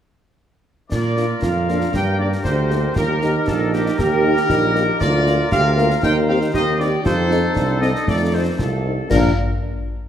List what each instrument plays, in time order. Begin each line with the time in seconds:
0.91 tuba A#2, woodwind section F4 A#4, trumpet section D5, concert bass drum, snare, crash
1.17 french horn section A#3 D4 F4, snare
1.42 tuba F2, euphonium F4, trumpet section F5, concert bass drum, snare
1.68 french horn section A#3 D4 F4, euphonium D4, snare
1.81 snare
1.93 tuba G2, woodwind section G4, trumpet section G5, concert bass drum, snare
2.19 french horn section A#3 D4 G4, trumpet section D5
2.33 snare
2.44 tuba D2, euphonium G4, trumpet section C5, concert bass drum, snare
2.70 french horn section A#3 D4 G4, snare
2.96 tuba D#2, euphonium F4, woodwind section G4 A#4, trumpet section A#4, concert bass drum, snare
3.22 french horn section A#3 D#4 G4, euphonium D#4, snare
3.47 tuba A#1, trumpet section A4, concert bass drum, snare
3.73 french horn section A#3 D#4 G4, trumpet section G4, snare
3.86 snare
3.98 tuba D#2, euphonium G4, trumpet section A#4, concert bass drum, snare
4.24 french horn section A#3 D#4 G4
4.37 snare
4.50 tuba A#1, euphonium D#4, concert bass drum, snare
4.75 french horn section A#3 D#4 G4, snare
4.99 tuba D2, woodwind section F4 A#4, euphonium F4, trumpet section D5, concert bass drum, snare, crash
5.26 french horn section A#3 F4 A#4, snare
5.51 tuba D2, euphonium G4, trumpet section F5, concert bass drum, snare
5.77 french horn section A#3 F4 A#4, euphonium F4, snare
5.91 snare
6.03 tuba D#2, woodwind section D#4 C5, euphonium D#4, trumpet section G5, concert bass drum, snare
6.29 french horn section C4 D#4 G4, trumpet section F5
6.41 snare
6.54 tuba D#2, euphonium G4, trumpet section D#5, concert bass drum, snare
6.79 french horn section C4 D#4 G4, trumpet section D5, snare
7.04 tuba F2, woodwind section D#4 A4, euphonium F4, trumpet section C5, concert bass drum, snare
7.30 french horn section C4 D#4 A4, euphonium D#4, snare
7.55 tuba C2, euphonium D4, concert bass drum, snare
7.81 euphonium C4, french horn section C4 D#4 A4, trumpet section D#5, snare
7.96 snare
8.07 tuba F2, euphonium A3, trumpet section D5, concert bass drum, snare
8.32 french horn section C4 D#4 A4, trumpet section C5
8.59 tuba C2, euphonium F4, trumpet section A4, concert bass drum, snare
8.85 french horn section C4 D#4 A4
9.10 tuba A#1, french horn section A#3 D4 F4, woodwind section D4 A#4, trumpet section A#4, concert bass drum, snare, crash